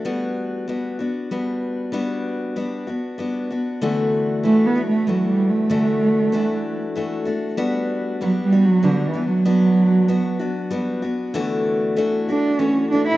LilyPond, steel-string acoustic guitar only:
\new Staff \with { instrumentName = "Steel-string acoustic guitar" } { \time 3/4 \key d \major \tempo 4 = 96 <g b d' fis'>4 <g b d' fis'>8 <b d' fis'>8 <g b d' fis'>4 | <g b d' fis'>4 <g b d' fis'>8 <b d' fis'>8 <g b d' fis'>8 <b d' fis'>8 | <d e a d' fis'>4 <e a d' fis'>8 <a d' fis'>8 <e a d' fis'>4 | <d e a d' fis'>4 <e a d' fis'>4 <e a d' fis'>8 <a d' fis'>8 |
<g b d' fis'>4 <g b d' fis'>8 <b d' fis'>8 <g b d' fis'>8 <b d' fis'>8 | <b d' fis'>4 <b d' fis'>8 <b d' fis'>8 <g b d' fis'>8 <b d' fis'>8 | <d e a d' fis'>4 <e a d' fis'>8 <a d' fis'>8 <e a fis'>8 <a d' fis'>8 | }